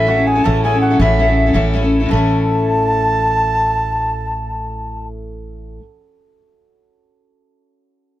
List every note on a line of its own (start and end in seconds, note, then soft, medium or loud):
0.00 0.41 A1 loud
0.00 2.84 C#4 medium
0.00 1.01 E4 medium
0.00 0.27 G#4 medium
0.00 0.25 E5 medium
0.00 0.28 E5 loud
0.07 0.17 A3 medium
0.07 0.17 C#4 medium
0.07 0.17 E4 medium
0.07 0.82 F#4 medium
0.07 0.15 A4 medium
0.17 0.37 A3 soft
0.17 0.36 C#4 medium
0.17 0.35 E4 medium
0.17 0.34 A4 medium
0.27 0.52 G#4 medium
0.27 0.45 G#5 loud
0.35 0.44 A3 soft
0.35 0.44 C#4 soft
0.35 0.45 E4 medium
0.35 0.45 A4 medium
0.43 0.97 A1 loud
0.43 0.64 A2 medium
0.43 0.64 E3 medium
0.43 0.62 A3 medium
0.43 0.64 C#4 medium
0.43 0.65 E4 medium
0.43 0.71 A4 medium
0.43 0.65 A4 medium
0.43 0.62 A5 medium
0.43 0.64 A5 loud
0.63 0.73 A3 medium
0.63 0.73 C#4 medium
0.63 0.72 E4 medium
0.63 2.16 G#4 medium
0.63 0.71 A4 medium
0.63 0.83 G#5 medium
0.63 0.80 G#5 medium
0.72 0.92 A3 soft
0.72 0.92 C#4 soft
0.72 0.90 E4 medium
0.72 0.89 A4 medium
0.81 4.08 F#4 medium
0.81 0.98 F#5 loud
0.81 0.99 F#5 medium
0.91 1.00 A3 soft
0.91 1.00 C#4 medium
0.91 1.00 E4 medium
0.91 1.00 A4 medium
0.99 1.52 A1 loud
0.99 1.20 A2 medium
0.99 1.20 E3 medium
0.99 1.18 A3 medium
0.99 1.19 C#4 medium
0.99 4.50 E4 medium
0.99 1.20 E4 medium
0.99 1.21 A4 loud
0.99 1.71 E5 medium
0.99 1.71 E5 loud
1.19 1.28 A3 medium
1.19 1.29 C#4 medium
1.19 1.28 E4 medium
1.19 1.27 A4 medium
1.28 1.48 A3 soft
1.28 1.47 C#4 soft
1.28 1.46 E4 medium
1.28 1.45 A4 medium
1.46 1.54 A3 medium
1.46 1.54 C#4 medium
1.46 1.54 E4 medium
1.46 1.55 A4 medium
1.53 2.07 A1 medium
1.53 1.74 A2 medium
1.53 1.75 E3 medium
1.53 1.72 A3 medium
1.53 1.73 C#4 medium
1.53 1.74 E4 medium
1.53 1.75 A4 loud
1.74 1.83 A3 medium
1.74 1.83 C#4 medium
1.74 1.81 E4 medium
1.74 1.80 A4 medium
1.82 2.02 A3 soft
1.82 2.01 C#4 medium
1.82 2.00 E4 medium
1.82 1.99 A4 medium
2.00 2.10 A3 medium
2.00 2.11 C#4 soft
2.00 2.10 E4 medium
2.00 2.10 A4 medium
2.06 5.79 A2 medium
2.06 5.80 E3 medium
2.06 5.06 A5 loud
2.10 5.77 A1 loud
2.10 5.81 A3 medium
2.10 5.82 C#4 loud
2.10 5.77 A4 medium
2.10 5.07 A5 loud
2.15 5.84 E4 medium
2.15 5.84 A4 loud